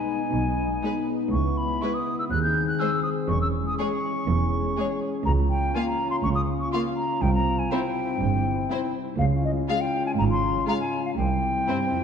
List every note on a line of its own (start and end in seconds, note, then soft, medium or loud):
0.00 0.32 B2 soft
0.00 0.66 G#3 soft
0.00 0.49 B3 soft
0.00 2.31 B3 medium
0.00 0.16 D#4 soft
0.00 1.29 D#4 medium
0.00 0.98 B4 soft
0.00 1.06 G#5 medium
0.18 0.82 D#4 soft
0.33 0.73 B1 soft
0.33 1.34 B2 soft
0.33 0.73 B2 medium
0.50 2.33 B3 soft
0.67 1.65 G#3 soft
0.82 0.91 G#3 soft
0.82 0.90 D#4 soft
0.82 1.15 D#4 soft
0.82 0.93 B4 soft
0.99 1.97 B4 soft
1.16 1.34 D#4 soft
1.32 1.72 C#2 medium
1.32 2.33 C#3 soft
1.32 2.29 E4 medium
1.32 1.59 C#6 medium
1.49 2.33 C#4 soft
1.57 1.83 B5 medium
1.66 2.63 G#3 soft
1.81 1.90 G#3 soft
1.81 1.89 E4 soft
1.81 2.14 E4 soft
1.81 1.91 B4 soft
1.81 1.96 C#6 medium
1.94 2.18 D#6 medium
1.99 2.33 B4 soft
2.15 2.33 E4 soft
2.15 2.24 E6 medium
2.31 2.70 D#2 medium
2.31 3.32 D#3 soft
2.31 3.28 C4 medium
2.31 5.27 G#4 medium
2.31 2.42 F#6 medium
2.42 2.67 G6 medium
2.47 3.32 D#4 soft
2.64 3.62 G#3 soft
2.64 2.81 F#6 medium
2.79 2.88 G#3 soft
2.79 2.87 G#4 soft
2.79 3.12 G#4 soft
2.79 2.89 C5 soft
2.79 3.02 E6 medium
2.97 3.32 C5 soft
3.03 3.09 D#6 medium
3.14 3.79 G#4 soft
3.29 3.69 E1 medium
3.29 3.69 E2 medium
3.29 4.27 E3 soft
3.29 7.22 C#4 medium
3.29 3.41 C#6 medium
3.42 3.48 E6 medium
3.47 4.44 E4 soft
3.63 4.60 G#3 soft
3.63 3.78 D#6 medium
3.78 3.87 G#3 soft
3.78 3.86 G#4 soft
3.78 4.11 G#4 soft
3.78 3.87 C#5 soft
3.78 4.99 C#6 medium
3.96 4.92 C#5 soft
4.12 4.76 G#4 soft
4.29 4.67 E1 medium
4.29 4.67 E2 medium
4.29 5.29 E3 soft
4.45 5.29 E4 soft
4.62 5.29 G#3 soft
4.77 4.86 G#3 medium
4.77 4.85 G#4 soft
4.77 5.09 G#4 soft
4.77 4.87 C#5 soft
4.94 7.24 C#5 soft
5.10 5.28 G#4 soft
5.25 5.65 C#2 medium
5.25 6.23 C#3 medium
5.25 8.17 F4 medium
5.25 5.31 A#5 medium
5.42 6.39 C#4 soft
5.50 5.76 G5 medium
5.59 6.55 A#3 soft
5.75 5.83 A#3 medium
5.75 6.06 F4 medium
5.75 5.83 F4 soft
5.75 5.84 F5 soft
5.75 5.85 G#5 medium
5.86 6.10 A#5 medium
5.92 6.89 F5 soft
6.08 6.72 F4 soft
6.08 6.16 C6 medium
6.23 6.63 C#2 medium
6.23 7.24 C#3 medium
6.23 6.29 C#6 medium
6.35 6.41 D#6 medium
6.40 7.24 C#4 soft
6.57 7.24 A#3 soft
6.57 6.72 C#6 medium
6.72 6.82 A#3 medium
6.72 6.81 F4 soft
6.72 7.05 F4 soft
6.72 6.81 F5 soft
6.72 6.78 C6 medium
6.90 7.25 F5 soft
6.96 7.23 A#5 medium
7.06 7.25 F4 soft
7.22 7.61 C2 medium
7.22 8.20 C3 medium
7.22 9.02 C4 medium
7.22 7.33 G5 medium
7.34 7.60 A#5 medium
7.39 8.37 G3 soft
7.55 8.53 C4 soft
7.59 7.72 G#5 medium
7.71 7.80 C4 medium
7.71 7.79 E4 soft
7.71 8.03 E4 medium
7.71 7.79 C5 medium
7.71 8.94 G5 medium
7.88 8.86 C5 medium
8.04 8.69 E4 medium
8.20 8.60 G1 medium
8.20 8.59 G2 medium
8.20 9.22 C3 medium
8.20 9.02 E4 medium
8.38 9.22 G3 soft
8.54 9.22 C4 medium
8.70 8.78 C4 medium
8.70 8.78 E4 soft
8.70 9.02 E4 medium
8.70 8.79 C5 soft
8.87 9.22 C5 soft
9.03 9.22 E4 soft
9.19 9.58 C#2 medium
9.19 9.59 C#2 medium
9.19 10.17 C#3 medium
9.19 9.65 C#4 medium
9.19 9.65 F4 medium
9.19 9.25 F5 medium
9.36 10.33 C#4 soft
9.45 9.51 D#5 medium
9.52 10.51 G#3 soft
9.68 9.77 G#3 soft
9.68 11.15 C#4 medium
9.68 9.76 F4 medium
9.68 10.01 F4 medium
9.68 11.15 F4 medium
9.68 9.82 F5 medium
9.68 9.77 F5 medium
9.81 10.06 G5 medium
9.85 10.83 F5 soft
10.02 10.67 F4 soft
10.06 10.12 G#5 medium
10.18 10.58 G#1 medium
10.18 10.57 G#2 medium
10.18 11.20 C#3 soft
10.18 10.24 A#5 medium
10.31 11.20 C#4 soft
10.31 10.67 C6 medium
10.52 11.20 G#3 soft
10.67 10.76 G#3 soft
10.67 10.75 F4 soft
10.67 11.00 F4 soft
10.67 10.76 F5 soft
10.67 10.73 A#5 medium
10.80 11.05 G#5 medium
10.85 11.20 F5 soft
11.01 11.20 F4 soft
11.05 11.11 F5 medium
11.17 11.57 C2 medium
11.17 11.58 C2 medium
11.17 12.04 C3 medium
11.17 12.04 C4 medium
11.17 12.04 E4 medium
11.17 12.04 G5 medium
11.35 12.04 G3 soft
11.51 12.04 C4 soft
11.67 11.92 G2 medium
11.67 11.77 C4 soft
11.67 11.75 E4 soft
11.67 12.01 E4 soft
11.67 11.76 C5 soft
11.86 12.04 C5 soft
11.93 12.01 F2 soft